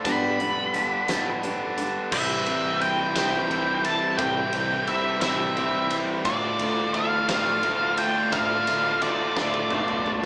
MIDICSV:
0, 0, Header, 1, 8, 480
1, 0, Start_track
1, 0, Key_signature, 0, "major"
1, 0, Tempo, 690449
1, 32, Time_signature, 6, 3, 24, 8
1, 7130, End_track
2, 0, Start_track
2, 0, Title_t, "Lead electric guitar"
2, 0, Program_c, 0, 29
2, 35, Note_on_c, 0, 83, 107
2, 966, Note_off_c, 0, 83, 0
2, 1486, Note_on_c, 0, 76, 84
2, 1954, Note_off_c, 0, 76, 0
2, 1957, Note_on_c, 0, 79, 89
2, 2178, Note_off_c, 0, 79, 0
2, 2199, Note_on_c, 0, 79, 89
2, 2675, Note_off_c, 0, 79, 0
2, 2678, Note_on_c, 0, 81, 95
2, 2900, Note_off_c, 0, 81, 0
2, 2903, Note_on_c, 0, 79, 95
2, 3392, Note_on_c, 0, 76, 84
2, 3402, Note_off_c, 0, 79, 0
2, 3615, Note_off_c, 0, 76, 0
2, 3623, Note_on_c, 0, 76, 80
2, 4140, Note_off_c, 0, 76, 0
2, 4347, Note_on_c, 0, 74, 82
2, 4823, Note_off_c, 0, 74, 0
2, 4826, Note_on_c, 0, 77, 93
2, 5058, Note_off_c, 0, 77, 0
2, 5066, Note_on_c, 0, 77, 84
2, 5549, Note_on_c, 0, 79, 97
2, 5564, Note_off_c, 0, 77, 0
2, 5788, Note_on_c, 0, 77, 97
2, 5799, Note_off_c, 0, 79, 0
2, 6271, Note_off_c, 0, 77, 0
2, 6273, Note_on_c, 0, 74, 92
2, 6513, Note_off_c, 0, 74, 0
2, 6521, Note_on_c, 0, 74, 89
2, 7031, Note_off_c, 0, 74, 0
2, 7130, End_track
3, 0, Start_track
3, 0, Title_t, "Tonewheel organ"
3, 0, Program_c, 1, 16
3, 1466, Note_on_c, 1, 79, 82
3, 1467, Note_on_c, 1, 64, 71
3, 1470, Note_on_c, 1, 72, 62
3, 4322, Note_off_c, 1, 64, 0
3, 4322, Note_off_c, 1, 79, 0
3, 4324, Note_off_c, 1, 72, 0
3, 4334, Note_on_c, 1, 65, 75
3, 4337, Note_on_c, 1, 81, 90
3, 4341, Note_on_c, 1, 74, 66
3, 7130, Note_off_c, 1, 65, 0
3, 7130, Note_off_c, 1, 74, 0
3, 7130, Note_off_c, 1, 81, 0
3, 7130, End_track
4, 0, Start_track
4, 0, Title_t, "Overdriven electric guitar"
4, 0, Program_c, 2, 29
4, 1720, Note_on_c, 2, 64, 84
4, 1728, Note_on_c, 2, 60, 62
4, 1735, Note_on_c, 2, 55, 57
4, 2186, Note_off_c, 2, 64, 0
4, 2195, Note_off_c, 2, 60, 0
4, 2197, Note_off_c, 2, 55, 0
4, 2672, Note_on_c, 2, 64, 77
4, 2683, Note_on_c, 2, 60, 68
4, 2691, Note_on_c, 2, 55, 62
4, 2908, Note_off_c, 2, 55, 0
4, 2916, Note_off_c, 2, 60, 0
4, 2920, Note_off_c, 2, 64, 0
4, 3151, Note_on_c, 2, 64, 73
4, 3161, Note_on_c, 2, 60, 63
4, 3166, Note_on_c, 2, 55, 61
4, 3619, Note_off_c, 2, 64, 0
4, 3625, Note_off_c, 2, 60, 0
4, 3631, Note_off_c, 2, 55, 0
4, 4109, Note_on_c, 2, 64, 78
4, 4118, Note_on_c, 2, 60, 63
4, 4125, Note_on_c, 2, 55, 61
4, 4337, Note_off_c, 2, 64, 0
4, 4341, Note_off_c, 2, 60, 0
4, 4344, Note_off_c, 2, 55, 0
4, 4592, Note_on_c, 2, 65, 76
4, 4602, Note_on_c, 2, 62, 67
4, 4610, Note_on_c, 2, 57, 64
4, 5061, Note_off_c, 2, 65, 0
4, 5068, Note_off_c, 2, 62, 0
4, 5075, Note_off_c, 2, 57, 0
4, 5548, Note_on_c, 2, 65, 83
4, 5555, Note_on_c, 2, 62, 74
4, 5563, Note_on_c, 2, 57, 59
4, 5794, Note_off_c, 2, 57, 0
4, 5801, Note_off_c, 2, 62, 0
4, 5804, Note_off_c, 2, 65, 0
4, 6036, Note_on_c, 2, 65, 77
4, 6045, Note_on_c, 2, 62, 72
4, 6053, Note_on_c, 2, 57, 63
4, 6505, Note_off_c, 2, 65, 0
4, 6512, Note_off_c, 2, 62, 0
4, 6517, Note_off_c, 2, 57, 0
4, 6997, Note_on_c, 2, 65, 69
4, 7005, Note_on_c, 2, 62, 73
4, 7012, Note_on_c, 2, 57, 60
4, 7130, Note_off_c, 2, 57, 0
4, 7130, Note_off_c, 2, 62, 0
4, 7130, Note_off_c, 2, 65, 0
4, 7130, End_track
5, 0, Start_track
5, 0, Title_t, "Steel-string acoustic guitar"
5, 0, Program_c, 3, 25
5, 276, Note_on_c, 3, 55, 72
5, 279, Note_on_c, 3, 62, 86
5, 490, Note_off_c, 3, 55, 0
5, 491, Note_off_c, 3, 62, 0
5, 1235, Note_on_c, 3, 55, 86
5, 1237, Note_on_c, 3, 62, 88
5, 1450, Note_off_c, 3, 55, 0
5, 1451, Note_off_c, 3, 62, 0
5, 7130, End_track
6, 0, Start_track
6, 0, Title_t, "Overdriven electric guitar"
6, 0, Program_c, 4, 29
6, 27, Note_on_c, 4, 43, 90
6, 33, Note_on_c, 4, 50, 88
6, 34, Note_on_c, 4, 55, 98
6, 38, Note_on_c, 4, 59, 117
6, 43, Note_on_c, 4, 62, 113
6, 505, Note_off_c, 4, 43, 0
6, 508, Note_off_c, 4, 50, 0
6, 513, Note_on_c, 4, 43, 91
6, 514, Note_off_c, 4, 55, 0
6, 517, Note_off_c, 4, 59, 0
6, 517, Note_on_c, 4, 50, 89
6, 521, Note_off_c, 4, 62, 0
6, 522, Note_on_c, 4, 55, 86
6, 525, Note_on_c, 4, 59, 82
6, 529, Note_on_c, 4, 62, 102
6, 733, Note_off_c, 4, 43, 0
6, 738, Note_off_c, 4, 50, 0
6, 741, Note_on_c, 4, 43, 91
6, 744, Note_off_c, 4, 55, 0
6, 746, Note_off_c, 4, 59, 0
6, 746, Note_on_c, 4, 50, 94
6, 750, Note_off_c, 4, 62, 0
6, 752, Note_on_c, 4, 55, 102
6, 754, Note_on_c, 4, 59, 104
6, 759, Note_on_c, 4, 62, 108
6, 972, Note_off_c, 4, 43, 0
6, 978, Note_off_c, 4, 50, 0
6, 980, Note_off_c, 4, 55, 0
6, 981, Note_on_c, 4, 43, 86
6, 986, Note_off_c, 4, 59, 0
6, 987, Note_on_c, 4, 50, 84
6, 988, Note_on_c, 4, 55, 80
6, 989, Note_off_c, 4, 62, 0
6, 995, Note_on_c, 4, 59, 84
6, 998, Note_on_c, 4, 62, 86
6, 1452, Note_off_c, 4, 43, 0
6, 1455, Note_off_c, 4, 50, 0
6, 1456, Note_off_c, 4, 55, 0
6, 1459, Note_off_c, 4, 59, 0
6, 1461, Note_off_c, 4, 62, 0
6, 1463, Note_on_c, 4, 48, 94
6, 1469, Note_on_c, 4, 52, 93
6, 1474, Note_on_c, 4, 55, 109
6, 1478, Note_on_c, 4, 60, 102
6, 1486, Note_on_c, 4, 64, 95
6, 1939, Note_off_c, 4, 52, 0
6, 1941, Note_on_c, 4, 52, 64
6, 1950, Note_off_c, 4, 55, 0
6, 1952, Note_on_c, 4, 55, 85
6, 1957, Note_off_c, 4, 60, 0
6, 1959, Note_on_c, 4, 60, 78
6, 1962, Note_off_c, 4, 64, 0
6, 1964, Note_on_c, 4, 64, 78
6, 2175, Note_off_c, 4, 64, 0
6, 2180, Note_off_c, 4, 60, 0
6, 2184, Note_on_c, 4, 64, 96
6, 2188, Note_on_c, 4, 60, 86
6, 2189, Note_off_c, 4, 55, 0
6, 2191, Note_off_c, 4, 52, 0
6, 2197, Note_on_c, 4, 55, 89
6, 2199, Note_on_c, 4, 52, 82
6, 2204, Note_off_c, 4, 48, 0
6, 2207, Note_on_c, 4, 48, 83
6, 2407, Note_off_c, 4, 52, 0
6, 2415, Note_on_c, 4, 52, 73
6, 2416, Note_off_c, 4, 55, 0
6, 2422, Note_off_c, 4, 60, 0
6, 2425, Note_on_c, 4, 55, 76
6, 2431, Note_off_c, 4, 64, 0
6, 2431, Note_on_c, 4, 60, 83
6, 2439, Note_on_c, 4, 64, 92
6, 2680, Note_off_c, 4, 48, 0
6, 2893, Note_off_c, 4, 52, 0
6, 2894, Note_on_c, 4, 48, 96
6, 2899, Note_off_c, 4, 55, 0
6, 2901, Note_on_c, 4, 52, 98
6, 2905, Note_off_c, 4, 60, 0
6, 2908, Note_on_c, 4, 55, 94
6, 2910, Note_off_c, 4, 64, 0
6, 2913, Note_on_c, 4, 60, 102
6, 2918, Note_on_c, 4, 64, 95
6, 3367, Note_off_c, 4, 52, 0
6, 3376, Note_off_c, 4, 55, 0
6, 3376, Note_on_c, 4, 52, 75
6, 3383, Note_off_c, 4, 60, 0
6, 3385, Note_on_c, 4, 55, 70
6, 3391, Note_on_c, 4, 60, 84
6, 3392, Note_off_c, 4, 64, 0
6, 3400, Note_on_c, 4, 64, 77
6, 3609, Note_off_c, 4, 64, 0
6, 3615, Note_off_c, 4, 60, 0
6, 3617, Note_on_c, 4, 64, 80
6, 3622, Note_off_c, 4, 55, 0
6, 3623, Note_off_c, 4, 48, 0
6, 3623, Note_on_c, 4, 60, 91
6, 3624, Note_off_c, 4, 52, 0
6, 3630, Note_on_c, 4, 55, 91
6, 3633, Note_on_c, 4, 52, 72
6, 3639, Note_on_c, 4, 48, 76
6, 3853, Note_off_c, 4, 52, 0
6, 3861, Note_on_c, 4, 52, 69
6, 3862, Note_off_c, 4, 55, 0
6, 3868, Note_off_c, 4, 60, 0
6, 3870, Note_on_c, 4, 55, 77
6, 3876, Note_off_c, 4, 64, 0
6, 3877, Note_on_c, 4, 60, 92
6, 3884, Note_on_c, 4, 64, 91
6, 4116, Note_off_c, 4, 48, 0
6, 4331, Note_off_c, 4, 52, 0
6, 4334, Note_on_c, 4, 50, 97
6, 4337, Note_off_c, 4, 55, 0
6, 4340, Note_off_c, 4, 60, 0
6, 4342, Note_on_c, 4, 57, 101
6, 4344, Note_off_c, 4, 64, 0
6, 4349, Note_on_c, 4, 62, 96
6, 4354, Note_on_c, 4, 65, 109
6, 4813, Note_off_c, 4, 50, 0
6, 4816, Note_on_c, 4, 50, 70
6, 4823, Note_off_c, 4, 57, 0
6, 4825, Note_on_c, 4, 57, 85
6, 4829, Note_off_c, 4, 62, 0
6, 4832, Note_on_c, 4, 62, 89
6, 4838, Note_off_c, 4, 65, 0
6, 4841, Note_on_c, 4, 65, 77
6, 5056, Note_off_c, 4, 65, 0
6, 5061, Note_off_c, 4, 62, 0
6, 5064, Note_on_c, 4, 65, 86
6, 5069, Note_off_c, 4, 57, 0
6, 5069, Note_on_c, 4, 62, 87
6, 5075, Note_off_c, 4, 50, 0
6, 5077, Note_on_c, 4, 57, 84
6, 5083, Note_on_c, 4, 50, 85
6, 5292, Note_off_c, 4, 50, 0
6, 5300, Note_on_c, 4, 50, 83
6, 5303, Note_off_c, 4, 57, 0
6, 5309, Note_off_c, 4, 62, 0
6, 5311, Note_on_c, 4, 57, 83
6, 5316, Note_off_c, 4, 65, 0
6, 5318, Note_on_c, 4, 62, 89
6, 5325, Note_on_c, 4, 65, 80
6, 5772, Note_off_c, 4, 50, 0
6, 5780, Note_on_c, 4, 50, 87
6, 5782, Note_off_c, 4, 57, 0
6, 5789, Note_off_c, 4, 62, 0
6, 5791, Note_on_c, 4, 57, 109
6, 5796, Note_off_c, 4, 65, 0
6, 5797, Note_on_c, 4, 62, 99
6, 5804, Note_on_c, 4, 65, 98
6, 6258, Note_off_c, 4, 50, 0
6, 6266, Note_on_c, 4, 50, 75
6, 6269, Note_off_c, 4, 57, 0
6, 6276, Note_off_c, 4, 62, 0
6, 6277, Note_on_c, 4, 57, 76
6, 6279, Note_off_c, 4, 65, 0
6, 6284, Note_on_c, 4, 62, 84
6, 6287, Note_on_c, 4, 65, 81
6, 6496, Note_off_c, 4, 65, 0
6, 6505, Note_off_c, 4, 62, 0
6, 6505, Note_on_c, 4, 65, 88
6, 6511, Note_off_c, 4, 57, 0
6, 6513, Note_on_c, 4, 62, 87
6, 6520, Note_on_c, 4, 57, 75
6, 6521, Note_off_c, 4, 50, 0
6, 6529, Note_on_c, 4, 50, 79
6, 6738, Note_off_c, 4, 50, 0
6, 6745, Note_off_c, 4, 57, 0
6, 6746, Note_on_c, 4, 50, 75
6, 6750, Note_off_c, 4, 62, 0
6, 6753, Note_on_c, 4, 57, 84
6, 6758, Note_on_c, 4, 62, 88
6, 6759, Note_off_c, 4, 65, 0
6, 6767, Note_on_c, 4, 65, 87
6, 7130, Note_off_c, 4, 50, 0
6, 7130, Note_off_c, 4, 57, 0
6, 7130, Note_off_c, 4, 62, 0
6, 7130, Note_off_c, 4, 65, 0
6, 7130, End_track
7, 0, Start_track
7, 0, Title_t, "Picked electric bass"
7, 0, Program_c, 5, 34
7, 36, Note_on_c, 5, 31, 91
7, 217, Note_off_c, 5, 31, 0
7, 283, Note_on_c, 5, 29, 83
7, 461, Note_off_c, 5, 29, 0
7, 525, Note_on_c, 5, 31, 96
7, 703, Note_off_c, 5, 31, 0
7, 761, Note_on_c, 5, 31, 96
7, 940, Note_off_c, 5, 31, 0
7, 1000, Note_on_c, 5, 31, 83
7, 1363, Note_off_c, 5, 31, 0
7, 1473, Note_on_c, 5, 36, 90
7, 1631, Note_off_c, 5, 36, 0
7, 1715, Note_on_c, 5, 36, 82
7, 1872, Note_off_c, 5, 36, 0
7, 1948, Note_on_c, 5, 36, 87
7, 2107, Note_off_c, 5, 36, 0
7, 2194, Note_on_c, 5, 36, 92
7, 2351, Note_off_c, 5, 36, 0
7, 2429, Note_on_c, 5, 36, 91
7, 2746, Note_off_c, 5, 36, 0
7, 2911, Note_on_c, 5, 36, 105
7, 3069, Note_off_c, 5, 36, 0
7, 3154, Note_on_c, 5, 36, 81
7, 3312, Note_off_c, 5, 36, 0
7, 3391, Note_on_c, 5, 36, 83
7, 3549, Note_off_c, 5, 36, 0
7, 3625, Note_on_c, 5, 36, 93
7, 3785, Note_off_c, 5, 36, 0
7, 3875, Note_on_c, 5, 36, 79
7, 4190, Note_off_c, 5, 36, 0
7, 4345, Note_on_c, 5, 38, 92
7, 4506, Note_off_c, 5, 38, 0
7, 4587, Note_on_c, 5, 38, 85
7, 4747, Note_off_c, 5, 38, 0
7, 4827, Note_on_c, 5, 38, 83
7, 4987, Note_off_c, 5, 38, 0
7, 5065, Note_on_c, 5, 38, 86
7, 5226, Note_off_c, 5, 38, 0
7, 5308, Note_on_c, 5, 38, 82
7, 5626, Note_off_c, 5, 38, 0
7, 5789, Note_on_c, 5, 38, 102
7, 5948, Note_off_c, 5, 38, 0
7, 6033, Note_on_c, 5, 38, 76
7, 6192, Note_off_c, 5, 38, 0
7, 6275, Note_on_c, 5, 38, 89
7, 6433, Note_off_c, 5, 38, 0
7, 6510, Note_on_c, 5, 38, 92
7, 6670, Note_off_c, 5, 38, 0
7, 6756, Note_on_c, 5, 35, 90
7, 7130, Note_off_c, 5, 35, 0
7, 7130, End_track
8, 0, Start_track
8, 0, Title_t, "Drums"
8, 35, Note_on_c, 9, 36, 110
8, 37, Note_on_c, 9, 42, 83
8, 105, Note_off_c, 9, 36, 0
8, 106, Note_off_c, 9, 42, 0
8, 278, Note_on_c, 9, 42, 63
8, 348, Note_off_c, 9, 42, 0
8, 517, Note_on_c, 9, 42, 65
8, 586, Note_off_c, 9, 42, 0
8, 754, Note_on_c, 9, 42, 89
8, 758, Note_on_c, 9, 38, 117
8, 823, Note_off_c, 9, 42, 0
8, 828, Note_off_c, 9, 38, 0
8, 996, Note_on_c, 9, 42, 65
8, 1065, Note_off_c, 9, 42, 0
8, 1235, Note_on_c, 9, 42, 74
8, 1304, Note_off_c, 9, 42, 0
8, 1474, Note_on_c, 9, 49, 127
8, 1475, Note_on_c, 9, 36, 116
8, 1543, Note_off_c, 9, 49, 0
8, 1545, Note_off_c, 9, 36, 0
8, 1713, Note_on_c, 9, 51, 73
8, 1782, Note_off_c, 9, 51, 0
8, 1957, Note_on_c, 9, 51, 72
8, 2026, Note_off_c, 9, 51, 0
8, 2194, Note_on_c, 9, 36, 79
8, 2194, Note_on_c, 9, 51, 106
8, 2199, Note_on_c, 9, 38, 120
8, 2263, Note_off_c, 9, 36, 0
8, 2264, Note_off_c, 9, 51, 0
8, 2269, Note_off_c, 9, 38, 0
8, 2439, Note_on_c, 9, 51, 71
8, 2508, Note_off_c, 9, 51, 0
8, 2673, Note_on_c, 9, 51, 76
8, 2743, Note_off_c, 9, 51, 0
8, 2910, Note_on_c, 9, 36, 124
8, 2910, Note_on_c, 9, 51, 107
8, 2980, Note_off_c, 9, 36, 0
8, 2980, Note_off_c, 9, 51, 0
8, 3147, Note_on_c, 9, 51, 69
8, 3217, Note_off_c, 9, 51, 0
8, 3388, Note_on_c, 9, 51, 71
8, 3458, Note_off_c, 9, 51, 0
8, 3624, Note_on_c, 9, 51, 92
8, 3628, Note_on_c, 9, 36, 82
8, 3629, Note_on_c, 9, 38, 121
8, 3693, Note_off_c, 9, 51, 0
8, 3697, Note_off_c, 9, 36, 0
8, 3698, Note_off_c, 9, 38, 0
8, 3870, Note_on_c, 9, 51, 66
8, 3940, Note_off_c, 9, 51, 0
8, 4105, Note_on_c, 9, 51, 82
8, 4175, Note_off_c, 9, 51, 0
8, 4344, Note_on_c, 9, 51, 97
8, 4347, Note_on_c, 9, 36, 118
8, 4414, Note_off_c, 9, 51, 0
8, 4416, Note_off_c, 9, 36, 0
8, 4584, Note_on_c, 9, 51, 64
8, 4653, Note_off_c, 9, 51, 0
8, 4824, Note_on_c, 9, 51, 68
8, 4893, Note_off_c, 9, 51, 0
8, 5066, Note_on_c, 9, 51, 100
8, 5067, Note_on_c, 9, 36, 85
8, 5071, Note_on_c, 9, 38, 121
8, 5135, Note_off_c, 9, 51, 0
8, 5136, Note_off_c, 9, 36, 0
8, 5140, Note_off_c, 9, 38, 0
8, 5304, Note_on_c, 9, 51, 70
8, 5373, Note_off_c, 9, 51, 0
8, 5544, Note_on_c, 9, 51, 78
8, 5614, Note_off_c, 9, 51, 0
8, 5786, Note_on_c, 9, 51, 107
8, 5788, Note_on_c, 9, 36, 115
8, 5855, Note_off_c, 9, 51, 0
8, 5858, Note_off_c, 9, 36, 0
8, 6029, Note_on_c, 9, 51, 81
8, 6098, Note_off_c, 9, 51, 0
8, 6268, Note_on_c, 9, 51, 84
8, 6338, Note_off_c, 9, 51, 0
8, 6511, Note_on_c, 9, 36, 83
8, 6518, Note_on_c, 9, 38, 63
8, 6581, Note_off_c, 9, 36, 0
8, 6588, Note_off_c, 9, 38, 0
8, 6631, Note_on_c, 9, 36, 59
8, 6701, Note_off_c, 9, 36, 0
8, 6746, Note_on_c, 9, 47, 77
8, 6816, Note_off_c, 9, 47, 0
8, 6869, Note_on_c, 9, 45, 87
8, 6939, Note_off_c, 9, 45, 0
8, 6994, Note_on_c, 9, 43, 96
8, 7063, Note_off_c, 9, 43, 0
8, 7130, End_track
0, 0, End_of_file